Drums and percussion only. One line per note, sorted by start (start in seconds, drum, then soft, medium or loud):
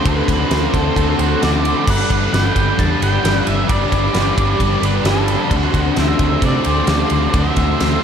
0.06 kick loud
0.06 ride loud
0.28 kick medium
0.28 ride medium
0.51 snare loud
0.51 ride loud
0.74 kick medium
0.74 ride medium
0.96 kick medium
0.96 ride loud
1.19 ride medium
1.43 snare loud
1.43 ride loud
1.65 ride medium
1.88 kick loud
1.88 crash loud
2.10 kick medium
2.10 ride medium
2.34 snare loud
2.34 ride loud
2.56 kick medium
2.56 ride medium
2.79 kick medium
2.79 ride loud
3.02 ride medium
3.25 snare loud
3.25 ride loud
3.47 ride medium
3.69 kick loud
3.69 ride loud
3.92 kick loud
3.92 ride medium
4.14 snare loud
4.14 ride loud
4.38 kick medium
4.38 ride medium
4.60 kick medium
4.60 ride loud
4.83 ride medium
5.05 snare loud
5.05 ride loud
5.28 ride medium
5.51 kick loud
5.51 ride loud
5.74 kick medium
5.74 ride medium
5.96 snare loud
5.96 ride loud
6.19 kick medium
6.19 ride medium
6.42 kick medium
6.42 ride loud
6.64 ride medium
6.87 snare loud
6.87 ride loud
7.10 ride medium
7.34 kick loud
7.34 ride loud
7.56 kick medium
7.56 ride medium
7.80 snare loud
7.80 ride loud